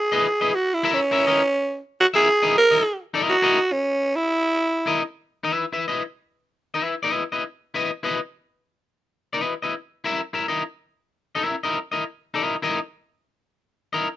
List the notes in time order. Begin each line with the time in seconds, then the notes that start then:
Already playing: G#4
0.12 E4 B4 D#5
0.41 E4 B4 D#5
0.55 F#4
0.74 E4
0.83 E4 A#4 E5
0.94 C#4
1.11 E4 A#4 E5
1.27 E4 A#4 D#5
2.00 F#4
2.14 E4 G#4 A#4 E5
2.43 E4 A#4 D#5
2.58 A#4
2.71 E4 A#4 D#5
3.14 E4 A#4 D#5
3.29 F#4
3.42 E4 A#4 D#5
3.72 C#4
4.16 E4
4.86 E4 A#4 D#5
5.43 E4 B4 E5
5.72 E4 B4 E5
5.88 E4 B4 D#5
6.74 E4 B4 E5
7.03 E4 B4 D#5
7.32 E4 B4 D#5
7.74 E4 B4 D#5
8.03 E4 B4 D#5
9.33 E4 B4 D#5
9.62 E4 B4 D#5
10.04 E4 A#4 E5
10.33 E4 A#4 E5
10.48 E4 A#4 D#5
11.35 E4 A#4 E5
11.63 E4 A#4 D#5
11.92 E4 A#4 D#5
12.34 E4 A#4 D#5
12.62 E4 A#4 D#5
13.93 E4 A#4 D#5